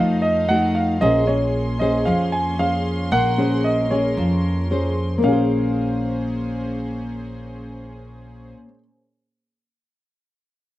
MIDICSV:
0, 0, Header, 1, 5, 480
1, 0, Start_track
1, 0, Key_signature, -5, "minor"
1, 0, Tempo, 525394
1, 932, Time_signature, 4, 2, 24, 8
1, 9849, End_track
2, 0, Start_track
2, 0, Title_t, "Grand piano"
2, 0, Program_c, 0, 0
2, 0, Note_on_c, 0, 77, 79
2, 199, Note_on_c, 0, 75, 79
2, 209, Note_off_c, 0, 77, 0
2, 444, Note_on_c, 0, 78, 80
2, 453, Note_off_c, 0, 75, 0
2, 684, Note_on_c, 0, 77, 73
2, 695, Note_off_c, 0, 78, 0
2, 922, Note_on_c, 0, 75, 87
2, 935, Note_off_c, 0, 77, 0
2, 1161, Note_on_c, 0, 73, 68
2, 1174, Note_off_c, 0, 75, 0
2, 1639, Note_on_c, 0, 75, 72
2, 1661, Note_off_c, 0, 73, 0
2, 1877, Note_on_c, 0, 77, 79
2, 1892, Note_off_c, 0, 75, 0
2, 2123, Note_on_c, 0, 80, 75
2, 2132, Note_off_c, 0, 77, 0
2, 2350, Note_off_c, 0, 80, 0
2, 2369, Note_on_c, 0, 77, 85
2, 2851, Note_on_c, 0, 78, 88
2, 2865, Note_off_c, 0, 77, 0
2, 3328, Note_on_c, 0, 75, 69
2, 3346, Note_off_c, 0, 78, 0
2, 3568, Note_on_c, 0, 73, 69
2, 3577, Note_off_c, 0, 75, 0
2, 4494, Note_off_c, 0, 73, 0
2, 4785, Note_on_c, 0, 77, 75
2, 7784, Note_off_c, 0, 77, 0
2, 9849, End_track
3, 0, Start_track
3, 0, Title_t, "String section"
3, 0, Program_c, 1, 48
3, 0, Note_on_c, 1, 57, 66
3, 0, Note_on_c, 1, 63, 60
3, 0, Note_on_c, 1, 75, 73
3, 0, Note_on_c, 1, 77, 60
3, 898, Note_off_c, 1, 75, 0
3, 914, Note_off_c, 1, 63, 0
3, 921, Note_off_c, 1, 57, 0
3, 925, Note_off_c, 1, 77, 0
3, 929, Note_on_c, 1, 58, 67
3, 930, Note_on_c, 1, 68, 59
3, 934, Note_on_c, 1, 84, 71
3, 935, Note_on_c, 1, 61, 60
3, 2832, Note_off_c, 1, 68, 0
3, 2857, Note_on_c, 1, 70, 54
3, 4735, Note_off_c, 1, 58, 0
3, 4737, Note_off_c, 1, 61, 0
3, 4737, Note_off_c, 1, 84, 0
3, 4756, Note_off_c, 1, 70, 0
3, 4763, Note_on_c, 1, 68, 56
3, 4768, Note_on_c, 1, 58, 63
3, 4769, Note_on_c, 1, 61, 54
3, 4769, Note_on_c, 1, 72, 62
3, 7761, Note_off_c, 1, 68, 0
3, 7767, Note_off_c, 1, 58, 0
3, 7767, Note_off_c, 1, 61, 0
3, 7767, Note_off_c, 1, 72, 0
3, 9849, End_track
4, 0, Start_track
4, 0, Title_t, "Nylon-string guitar"
4, 0, Program_c, 2, 24
4, 0, Note_on_c, 2, 53, 53
4, 0, Note_on_c, 2, 57, 54
4, 0, Note_on_c, 2, 63, 61
4, 415, Note_off_c, 2, 57, 0
4, 416, Note_off_c, 2, 63, 0
4, 455, Note_on_c, 2, 57, 55
4, 461, Note_on_c, 2, 63, 59
4, 464, Note_on_c, 2, 66, 56
4, 906, Note_off_c, 2, 53, 0
4, 914, Note_off_c, 2, 57, 0
4, 917, Note_off_c, 2, 63, 0
4, 918, Note_off_c, 2, 66, 0
4, 925, Note_on_c, 2, 61, 64
4, 929, Note_on_c, 2, 58, 57
4, 930, Note_on_c, 2, 68, 57
4, 935, Note_on_c, 2, 72, 66
4, 1130, Note_off_c, 2, 61, 0
4, 1132, Note_off_c, 2, 68, 0
4, 1133, Note_off_c, 2, 72, 0
4, 1173, Note_on_c, 2, 61, 52
4, 1176, Note_on_c, 2, 68, 55
4, 1614, Note_off_c, 2, 61, 0
4, 1615, Note_off_c, 2, 68, 0
4, 1650, Note_on_c, 2, 61, 59
4, 1655, Note_on_c, 2, 68, 58
4, 1657, Note_on_c, 2, 72, 69
4, 1867, Note_off_c, 2, 58, 0
4, 1886, Note_on_c, 2, 53, 52
4, 2333, Note_off_c, 2, 61, 0
4, 2334, Note_off_c, 2, 68, 0
4, 2336, Note_off_c, 2, 72, 0
4, 2364, Note_on_c, 2, 61, 55
4, 2368, Note_on_c, 2, 68, 49
4, 2374, Note_on_c, 2, 72, 53
4, 2825, Note_off_c, 2, 53, 0
4, 2845, Note_off_c, 2, 61, 0
4, 2846, Note_off_c, 2, 68, 0
4, 2847, Note_on_c, 2, 58, 60
4, 2850, Note_off_c, 2, 72, 0
4, 3086, Note_on_c, 2, 61, 57
4, 3089, Note_on_c, 2, 68, 52
4, 3093, Note_on_c, 2, 72, 62
4, 3530, Note_off_c, 2, 61, 0
4, 3532, Note_off_c, 2, 68, 0
4, 3534, Note_off_c, 2, 72, 0
4, 3573, Note_on_c, 2, 61, 59
4, 3578, Note_on_c, 2, 68, 52
4, 3785, Note_off_c, 2, 58, 0
4, 3820, Note_on_c, 2, 53, 51
4, 4255, Note_off_c, 2, 61, 0
4, 4256, Note_off_c, 2, 68, 0
4, 4299, Note_on_c, 2, 61, 52
4, 4305, Note_on_c, 2, 68, 53
4, 4310, Note_on_c, 2, 72, 58
4, 4732, Note_on_c, 2, 58, 60
4, 4753, Note_off_c, 2, 53, 0
4, 4757, Note_off_c, 2, 61, 0
4, 4760, Note_off_c, 2, 68, 0
4, 4762, Note_off_c, 2, 72, 0
4, 4783, Note_on_c, 2, 61, 63
4, 4825, Note_on_c, 2, 68, 68
4, 4866, Note_on_c, 2, 72, 68
4, 7929, Note_off_c, 2, 58, 0
4, 7981, Note_off_c, 2, 61, 0
4, 8023, Note_off_c, 2, 68, 0
4, 8064, Note_off_c, 2, 72, 0
4, 9849, End_track
5, 0, Start_track
5, 0, Title_t, "Upright bass"
5, 0, Program_c, 3, 32
5, 0, Note_on_c, 3, 41, 79
5, 895, Note_off_c, 3, 41, 0
5, 931, Note_on_c, 3, 34, 86
5, 1855, Note_off_c, 3, 34, 0
5, 1898, Note_on_c, 3, 41, 82
5, 2818, Note_off_c, 3, 41, 0
5, 2846, Note_on_c, 3, 34, 80
5, 3773, Note_off_c, 3, 34, 0
5, 3809, Note_on_c, 3, 41, 84
5, 4735, Note_off_c, 3, 41, 0
5, 4773, Note_on_c, 3, 34, 74
5, 7772, Note_off_c, 3, 34, 0
5, 9849, End_track
0, 0, End_of_file